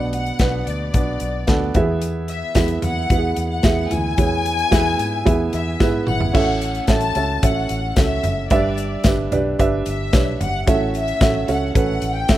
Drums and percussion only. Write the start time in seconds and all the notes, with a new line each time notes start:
0.13 closed hi-hat
0.26 closed hi-hat
0.39 kick, snare, closed hi-hat
0.67 closed hi-hat
0.94 kick, closed hi-hat
1.20 closed hi-hat
1.47 kick, snare, closed hi-hat
1.74 kick, closed hi-hat, floor tom
2.02 closed hi-hat, tambourine
2.28 closed hi-hat, tambourine
2.55 kick, snare, closed hi-hat, tambourine
2.68 closed hi-hat
2.82 closed hi-hat, floor tom, tambourine
3.10 kick, closed hi-hat
3.36 closed hi-hat, tambourine
3.63 kick, snare, closed hi-hat, tambourine
3.91 closed hi-hat, floor tom, tambourine
4.18 kick, closed hi-hat, tambourine
4.46 closed hi-hat
4.59 closed hi-hat
4.72 kick, snare, closed hi-hat, tambourine
4.99 closed hi-hat, tambourine
5.27 kick, closed hi-hat, tambourine
5.53 closed hi-hat, tambourine
5.80 kick, snare, tambourine
6.07 mid tom, tambourine
6.20 floor tom
6.35 kick, crash, tambourine
6.61 closed hi-hat, tambourine
6.75 closed hi-hat
6.87 kick, snare, closed hi-hat, tambourine
7.01 closed hi-hat
7.15 closed hi-hat, tambourine
7.42 kick, closed hi-hat, tambourine
7.69 closed hi-hat, tambourine
7.96 kick, snare, closed hi-hat, tambourine
8.23 closed hi-hat, floor tom, tambourine
8.50 kick, closed hi-hat, tambourine
8.77 closed hi-hat, tambourine
9.04 kick, snare, closed hi-hat, tambourine
9.32 closed hi-hat, floor tom, tambourine
9.59 kick, closed hi-hat, tambourine
9.85 closed hi-hat, tambourine
10.13 kick, snare, closed hi-hat, tambourine
10.41 closed hi-hat, floor tom, tambourine
10.67 kick, closed hi-hat, tambourine
10.94 closed hi-hat, tambourine
11.08 closed hi-hat
11.21 kick, snare, closed hi-hat, tambourine
11.48 closed hi-hat, tambourine
11.75 kick, closed hi-hat
12.01 closed hi-hat, tambourine
12.28 kick, snare, closed hi-hat, tambourine